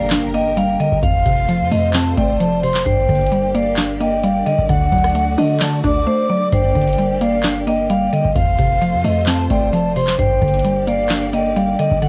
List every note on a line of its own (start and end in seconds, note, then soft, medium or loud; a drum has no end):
0.00 0.76 G1 loud
0.00 0.34 G2 loud
0.00 0.57 D3 medium
0.00 1.01 D3 medium
0.00 0.56 G3 medium
0.00 0.33 A#3 medium
0.00 1.01 A#3 medium
0.00 1.01 G4 medium
0.00 1.01 A#4 medium
0.00 0.32 F5 medium
0.00 impact medium
0.10 1.03 D4 loud
0.10 snare loud
0.10 clap medium
0.10 closed hi-hat medium
0.34 1.03 A#3 medium
0.34 0.51 D#5 medium
0.34 0.99 G5 medium
0.34 closed hi-hat medium
0.57 1.03 G3 medium
0.57 0.74 F5 medium
0.57 closed hi-hat medium
0.80 1.03 D3 medium
0.80 0.97 D#5 medium
0.80 closed hi-hat medium
0.92 1.02 G1 loud
0.92 kick medium
1.03 1.25 F1 loud
1.03 2.17 F2 medium
1.03 2.84 C3 medium
1.03 2.84 A3 medium
1.03 2.84 F4 medium
1.03 2.84 C5 medium
1.03 1.68 F5 medium
1.03 1.90 F5 loud
1.03 kick loud
1.03 closed hi-hat medium
1.26 1.62 F1 loud
1.26 2.40 C3 medium
1.26 kick loud
1.26 closed hi-hat medium
1.49 2.39 F3 medium
1.49 closed hi-hat medium
1.61 1.71 F2 loud
1.71 2.16 F2 loud
1.71 2.16 A3 medium
1.71 1.89 D#5 medium
1.71 open hi-hat medium
1.94 2.86 C4 loud
1.94 2.16 A5 medium
1.94 snare loud
1.94 clap medium
1.94 closed hi-hat medium
2.17 2.83 F1 loud
2.17 2.86 A3 medium
2.17 2.60 D5 medium
2.17 2.39 G5 medium
2.17 kick loud
2.17 closed hi-hat medium
2.40 2.86 F3 medium
2.40 2.62 A5 medium
2.40 closed hi-hat medium
2.63 2.86 C3 medium
2.63 2.81 C5 medium
2.63 2.85 C6 medium
2.63 open hi-hat medium
2.75 snare medium
2.75 clap medium
2.86 3.08 G1 loud
2.86 4.00 G2 medium
2.86 8.32 D3 medium
2.86 4.67 A#3 medium
2.86 4.67 G4 medium
2.86 3.51 C5 loud
2.86 8.32 D5 medium
2.86 3.51 G5 loud
2.86 kick loud
2.86 closed hi-hat medium
3.09 4.42 G1 loud
3.09 4.24 D3 medium
3.09 kick medium
3.09 closed hi-hat soft
3.15 closed hi-hat medium
3.21 closed hi-hat medium
3.26 closed hi-hat medium
3.32 4.22 G3 medium
3.32 closed hi-hat medium
3.55 3.99 A#3 medium
3.55 3.72 D5 medium
3.55 3.98 F5 medium
3.55 closed hi-hat medium
3.77 4.69 D4 loud
3.77 snare loud
3.77 clap medium
3.77 closed hi-hat medium
4.00 4.69 A#3 medium
4.00 4.18 D#5 medium
4.00 4.65 G5 medium
4.00 closed hi-hat medium
4.23 4.69 G3 medium
4.23 4.41 F5 medium
4.23 closed hi-hat medium
4.46 4.68 D3 medium
4.46 4.64 D#5 medium
4.46 closed hi-hat medium
4.58 4.69 G1 loud
4.58 kick medium
4.69 4.91 D2 loud
4.69 5.84 D3 loud
4.69 6.51 A3 medium
4.69 6.51 F#4 medium
4.69 5.34 F#5 loud
4.69 kick loud
4.69 closed hi-hat medium
4.92 5.36 D2 loud
4.92 6.07 F#3 medium
4.92 kick medium
4.92 closed hi-hat medium
4.98 closed hi-hat medium
5.04 cross-stick loud
5.04 closed hi-hat medium
5.10 closed hi-hat medium
5.15 6.05 A3 medium
5.15 closed hi-hat medium
5.38 5.82 D3 loud
5.38 5.83 D4 medium
5.38 5.55 D#5 medium
5.38 open hi-hat medium
5.60 6.52 D5 loud
5.60 5.83 A5 medium
5.60 snare loud
5.60 clap medium
5.60 closed hi-hat medium
5.84 6.06 D2 loud
5.84 6.52 D4 medium
5.84 6.01 D5 medium
5.84 6.48 D6 medium
5.84 kick loud
5.84 closed hi-hat medium
6.07 6.52 A3 medium
6.07 6.24 C5 medium
6.30 6.52 F#3 medium
6.30 6.47 D5 medium
6.52 6.74 G1 loud
6.52 7.67 G2 loud
6.52 8.34 A#3 medium
6.52 8.34 G4 medium
6.52 7.17 C5 loud
6.52 7.17 G5 loud
6.52 kick loud
6.52 closed hi-hat medium
6.75 8.09 G1 loud
6.75 7.90 D3 medium
6.75 kick loud
6.75 closed hi-hat soft
6.81 closed hi-hat medium
6.88 closed hi-hat medium
6.93 closed hi-hat medium
6.98 7.89 G3 medium
6.98 closed hi-hat medium
7.21 7.66 A#3 medium
7.21 7.39 D5 medium
7.21 7.64 F5 medium
7.21 closed hi-hat medium
7.43 8.36 D4 loud
7.43 snare loud
7.43 clap medium
7.43 closed hi-hat medium
7.66 8.36 A#3 medium
7.66 7.84 D#5 medium
7.66 8.31 G5 medium
7.66 closed hi-hat medium
7.90 8.36 G3 medium
7.90 8.07 F5 medium
7.90 closed hi-hat medium
8.13 8.36 D3 medium
8.13 8.30 D#5 medium
8.13 closed hi-hat medium
8.25 8.35 G1 loud
8.25 kick medium
8.36 8.58 F1 loud
8.36 9.50 F2 medium
8.36 10.17 C3 medium
8.36 10.17 A3 medium
8.36 10.17 F4 medium
8.36 10.17 C5 medium
8.36 9.23 F5 loud
8.36 9.00 F5 medium
8.36 kick loud
8.36 closed hi-hat medium
8.58 8.95 F1 loud
8.58 9.73 C3 medium
8.58 kick loud
8.58 closed hi-hat medium
8.81 9.72 F3 medium
8.81 closed hi-hat medium
8.94 9.04 F2 loud
9.04 9.48 F2 loud
9.04 9.49 A3 medium
9.04 9.22 D#5 medium
9.04 open hi-hat medium
9.26 10.19 C4 loud
9.26 9.49 A5 medium
9.26 snare loud
9.26 clap medium
9.26 closed hi-hat medium
9.50 10.16 F1 loud
9.50 10.19 A3 medium
9.50 9.93 D5 medium
9.50 9.72 G5 medium
9.50 kick loud
9.50 closed hi-hat medium
9.73 10.19 F3 medium
9.73 9.95 A5 medium
9.73 closed hi-hat medium
9.96 10.19 C3 medium
9.96 10.14 C5 medium
9.96 10.18 C6 medium
9.96 open hi-hat medium
10.07 snare medium
10.07 clap medium
10.19 10.41 G1 loud
10.19 11.33 G2 medium
10.19 12.09 D3 medium
10.19 12.00 A#3 medium
10.19 12.00 G4 medium
10.19 10.84 C5 loud
10.19 12.09 D5 medium
10.19 10.84 G5 loud
10.19 kick loud
10.19 closed hi-hat medium
10.42 11.75 G1 loud
10.42 11.56 D3 medium
10.42 kick medium
10.42 closed hi-hat soft
10.48 closed hi-hat medium
10.54 closed hi-hat medium
10.59 closed hi-hat medium
10.65 11.55 G3 medium
10.65 closed hi-hat medium
10.87 11.32 A#3 medium
10.87 11.05 D5 medium
10.87 11.31 F5 medium
10.87 closed hi-hat medium
11.10 12.02 D4 loud
11.10 snare loud
11.10 clap medium
11.10 closed hi-hat medium
11.33 12.02 A#3 medium
11.33 11.51 D#5 medium
11.33 11.98 G5 medium
11.33 closed hi-hat medium
11.56 12.02 G3 loud
11.56 11.74 F5 medium
11.56 closed hi-hat medium
11.79 12.01 D3 medium
11.79 11.96 D#5 medium
11.79 closed hi-hat medium
11.91 12.02 G1 loud
11.91 kick medium
12.02 12.09 D3 loud
12.02 12.09 A3 medium
12.02 12.09 F#4 medium
12.02 12.09 F#5 loud
12.02 closed hi-hat medium